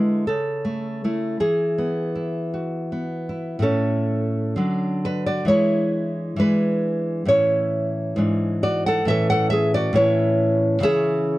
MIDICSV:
0, 0, Header, 1, 2, 480
1, 0, Start_track
1, 0, Key_signature, 3, "major"
1, 0, Tempo, 1111111
1, 602, Time_signature, 2, 2, 24, 8
1, 1563, Tempo, 961538
1, 2043, Tempo, 904977
1, 3963, Tempo, 881057
1, 5698, End_track
2, 0, Start_track
2, 0, Title_t, "Nylon-string guitar"
2, 0, Program_c, 0, 24
2, 0, Note_on_c, 0, 50, 60
2, 0, Note_on_c, 0, 56, 45
2, 0, Note_on_c, 0, 64, 52
2, 0, Note_on_c, 0, 71, 73
2, 100, Note_off_c, 0, 71, 0
2, 103, Note_off_c, 0, 64, 0
2, 105, Note_off_c, 0, 56, 0
2, 107, Note_off_c, 0, 50, 0
2, 117, Note_on_c, 0, 69, 76
2, 124, Note_on_c, 0, 49, 53
2, 280, Note_on_c, 0, 57, 49
2, 446, Note_off_c, 0, 57, 0
2, 450, Note_on_c, 0, 57, 41
2, 453, Note_on_c, 0, 64, 47
2, 584, Note_off_c, 0, 69, 0
2, 591, Note_off_c, 0, 49, 0
2, 593, Note_off_c, 0, 57, 0
2, 594, Note_off_c, 0, 64, 0
2, 605, Note_on_c, 0, 52, 59
2, 607, Note_on_c, 0, 68, 70
2, 770, Note_on_c, 0, 59, 46
2, 931, Note_on_c, 0, 64, 40
2, 1096, Note_on_c, 0, 66, 42
2, 1256, Note_off_c, 0, 59, 0
2, 1262, Note_on_c, 0, 59, 42
2, 1322, Note_off_c, 0, 68, 0
2, 1417, Note_off_c, 0, 64, 0
2, 1422, Note_on_c, 0, 64, 40
2, 1548, Note_off_c, 0, 52, 0
2, 1551, Note_on_c, 0, 45, 56
2, 1554, Note_off_c, 0, 59, 0
2, 1556, Note_on_c, 0, 57, 46
2, 1565, Note_off_c, 0, 66, 0
2, 1565, Note_on_c, 0, 69, 86
2, 1567, Note_off_c, 0, 64, 0
2, 1568, Note_on_c, 0, 61, 69
2, 2022, Note_off_c, 0, 45, 0
2, 2025, Note_off_c, 0, 57, 0
2, 2032, Note_on_c, 0, 50, 54
2, 2039, Note_on_c, 0, 54, 43
2, 2042, Note_on_c, 0, 62, 49
2, 2265, Note_off_c, 0, 69, 0
2, 2267, Note_off_c, 0, 61, 0
2, 2290, Note_off_c, 0, 62, 0
2, 2292, Note_on_c, 0, 71, 77
2, 2296, Note_on_c, 0, 62, 64
2, 2401, Note_off_c, 0, 62, 0
2, 2404, Note_off_c, 0, 71, 0
2, 2406, Note_on_c, 0, 74, 85
2, 2411, Note_on_c, 0, 66, 72
2, 2502, Note_off_c, 0, 54, 0
2, 2503, Note_off_c, 0, 50, 0
2, 2504, Note_on_c, 0, 52, 56
2, 2512, Note_on_c, 0, 56, 48
2, 2518, Note_on_c, 0, 62, 50
2, 2519, Note_off_c, 0, 66, 0
2, 2519, Note_off_c, 0, 74, 0
2, 2521, Note_on_c, 0, 73, 96
2, 2528, Note_on_c, 0, 64, 71
2, 2983, Note_off_c, 0, 52, 0
2, 2988, Note_off_c, 0, 73, 0
2, 2989, Note_off_c, 0, 56, 0
2, 2989, Note_on_c, 0, 52, 59
2, 2990, Note_off_c, 0, 64, 0
2, 2992, Note_off_c, 0, 62, 0
2, 3001, Note_on_c, 0, 56, 52
2, 3007, Note_on_c, 0, 71, 86
2, 3012, Note_on_c, 0, 62, 68
2, 3459, Note_off_c, 0, 52, 0
2, 3462, Note_on_c, 0, 45, 60
2, 3466, Note_off_c, 0, 71, 0
2, 3466, Note_on_c, 0, 52, 49
2, 3467, Note_off_c, 0, 62, 0
2, 3468, Note_off_c, 0, 56, 0
2, 3476, Note_on_c, 0, 61, 48
2, 3478, Note_on_c, 0, 73, 94
2, 3482, Note_on_c, 0, 64, 71
2, 3937, Note_off_c, 0, 45, 0
2, 3940, Note_off_c, 0, 52, 0
2, 3941, Note_on_c, 0, 44, 60
2, 3945, Note_off_c, 0, 61, 0
2, 3950, Note_on_c, 0, 52, 47
2, 3955, Note_on_c, 0, 62, 51
2, 4177, Note_off_c, 0, 73, 0
2, 4180, Note_off_c, 0, 64, 0
2, 4197, Note_on_c, 0, 66, 69
2, 4198, Note_on_c, 0, 74, 99
2, 4311, Note_off_c, 0, 66, 0
2, 4319, Note_off_c, 0, 74, 0
2, 4325, Note_on_c, 0, 78, 99
2, 4333, Note_on_c, 0, 69, 81
2, 4416, Note_off_c, 0, 44, 0
2, 4420, Note_off_c, 0, 52, 0
2, 4423, Note_off_c, 0, 62, 0
2, 4428, Note_on_c, 0, 45, 69
2, 4436, Note_on_c, 0, 52, 59
2, 4440, Note_off_c, 0, 69, 0
2, 4441, Note_off_c, 0, 78, 0
2, 4441, Note_on_c, 0, 61, 60
2, 4443, Note_on_c, 0, 76, 102
2, 4454, Note_on_c, 0, 69, 87
2, 4560, Note_off_c, 0, 76, 0
2, 4561, Note_off_c, 0, 69, 0
2, 4562, Note_on_c, 0, 78, 104
2, 4572, Note_on_c, 0, 69, 84
2, 4669, Note_off_c, 0, 78, 0
2, 4671, Note_on_c, 0, 76, 112
2, 4682, Note_off_c, 0, 69, 0
2, 4685, Note_on_c, 0, 68, 79
2, 4799, Note_off_c, 0, 68, 0
2, 4801, Note_off_c, 0, 76, 0
2, 4803, Note_on_c, 0, 74, 101
2, 4810, Note_on_c, 0, 66, 85
2, 4898, Note_off_c, 0, 45, 0
2, 4904, Note_off_c, 0, 52, 0
2, 4905, Note_on_c, 0, 45, 73
2, 4911, Note_on_c, 0, 52, 57
2, 4913, Note_off_c, 0, 61, 0
2, 4920, Note_on_c, 0, 61, 56
2, 4920, Note_on_c, 0, 73, 102
2, 4922, Note_off_c, 0, 66, 0
2, 4926, Note_off_c, 0, 74, 0
2, 4928, Note_on_c, 0, 64, 76
2, 5377, Note_off_c, 0, 45, 0
2, 5378, Note_off_c, 0, 52, 0
2, 5380, Note_off_c, 0, 73, 0
2, 5380, Note_on_c, 0, 49, 74
2, 5382, Note_off_c, 0, 64, 0
2, 5385, Note_off_c, 0, 61, 0
2, 5385, Note_on_c, 0, 52, 64
2, 5394, Note_on_c, 0, 61, 61
2, 5397, Note_on_c, 0, 76, 127
2, 5404, Note_on_c, 0, 68, 90
2, 5698, Note_off_c, 0, 49, 0
2, 5698, Note_off_c, 0, 52, 0
2, 5698, Note_off_c, 0, 61, 0
2, 5698, Note_off_c, 0, 68, 0
2, 5698, Note_off_c, 0, 76, 0
2, 5698, End_track
0, 0, End_of_file